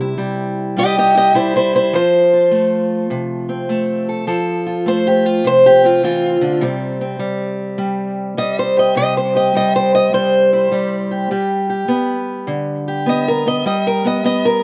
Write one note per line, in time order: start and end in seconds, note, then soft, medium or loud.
0.00 1.92 C3 medium
0.00 0.16 G3 medium
0.00 1.14 E4 soft
0.00 0.20 G4 loud
0.18 0.75 G3 medium
0.77 1.33 G3 medium
0.77 0.97 G4 medium
0.77 0.97 D#5 loud
0.98 1.16 G4 medium
0.98 1.16 D#5 medium
1.15 1.34 E4 soft
1.15 1.35 G4 medium
1.15 1.36 D#5 medium
1.34 1.93 G3 medium
1.34 1.55 E4 medium
1.34 1.55 C5 medium
1.56 1.74 E4 medium
1.56 1.74 C5 medium
1.75 1.94 E4 medium
1.75 1.94 C5 medium
1.93 4.25 F3 medium
1.93 3.12 C5 medium
2.33 4.26 F4 soft
2.51 3.68 A3 medium
3.10 4.25 C3 medium
3.49 5.83 C4 soft
3.69 4.25 A3 medium
4.09 4.26 A4 soft
4.27 6.03 F3 medium
4.27 4.86 A4 medium
4.66 5.06 F4 soft
4.86 6.59 A3 medium
4.86 5.07 C5 loud
5.07 5.26 G4 medium
5.26 5.45 F4 loud
5.44 6.59 C3 medium
5.44 5.66 C5 loud
5.66 5.86 G4 medium
5.84 6.62 C4 soft
5.84 6.03 F4 medium
6.03 6.41 E3 medium
6.03 6.63 F4 medium
6.41 6.62 D3 medium
6.61 8.93 C3 medium
6.61 7.19 G3 medium
6.61 7.01 C4 soft
7.01 10.52 C4 soft
7.19 7.78 G3 medium
7.78 8.37 G3 medium
8.37 9.55 G3 medium
8.37 8.58 D#5 loud
8.59 8.78 C5 medium
8.77 9.34 G4 soft
8.77 8.96 D#5 medium
8.95 11.28 C3 medium
8.95 9.16 D#5 medium
9.17 9.36 C5 medium
9.35 11.11 G4 soft
9.35 9.55 D#5 medium
9.55 10.13 G3 medium
9.55 9.75 D#5 loud
9.76 9.94 C5 loud
9.95 10.14 D#5 loud
10.13 10.72 G3 medium
10.13 11.31 C5 loud
10.53 11.29 E4 soft
10.72 11.31 G3 medium
11.11 11.31 G4 soft
11.31 13.63 G3 medium
11.31 11.69 G4 medium
11.70 12.87 G4 soft
11.88 13.05 B3 medium
12.47 13.63 D3 medium
12.88 13.27 G4 soft
13.06 13.45 B3 medium
13.06 13.28 D#5 loud
13.28 13.47 A#4 medium
13.46 13.64 B3 soft
13.46 13.66 D#5 loud
13.66 14.63 G3 medium
13.66 13.86 D#5 loud
13.87 14.06 A#4 loud
14.05 14.23 B3 soft
14.05 14.24 D#5 medium
14.24 14.63 B3 medium
14.24 14.45 D#5 loud
14.45 14.63 A#4 medium